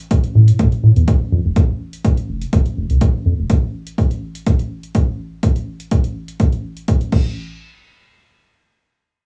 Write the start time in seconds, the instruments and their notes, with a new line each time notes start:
0.11 kick, closed hi-hat
0.24 closed hi-hat
0.35 analog synth bass A2
0.48 closed hi-hat
0.59 analog synth bass A2, kick, closed hi-hat
0.72 closed hi-hat
0.83 analog synth bass A2
0.96 analog synth bass E2, closed hi-hat
1.08 kick, closed hi-hat
1.32 analog synth bass F2
1.45 analog synth bass F1
1.56 analog synth bass F2, kick, closed hi-hat
1.93 closed hi-hat
2.05 kick, closed hi-hat
2.17 closed hi-hat
2.29 analog synth bass F1
2.42 closed hi-hat
2.53 analog synth bass F1, kick, closed hi-hat
2.66 closed hi-hat
2.77 analog synth bass F1
2.90 analog synth bass C2, closed hi-hat
3.01 kick, closed hi-hat
3.26 analog synth bass F2
3.38 analog synth bass F1
3.50 kick, closed hi-hat
3.87 closed hi-hat
3.98 kick, closed hi-hat
4.11 closed hi-hat
4.35 closed hi-hat
4.46 kick, closed hi-hat
4.59 closed hi-hat
4.83 closed hi-hat
4.95 kick, closed hi-hat
5.43 kick, closed hi-hat
5.56 closed hi-hat
5.80 closed hi-hat
5.91 kick, closed hi-hat
6.04 closed hi-hat
6.28 closed hi-hat
6.40 kick, closed hi-hat
6.53 closed hi-hat
6.77 closed hi-hat
6.88 kick, closed hi-hat
7.01 closed hi-hat
7.12 kick, crash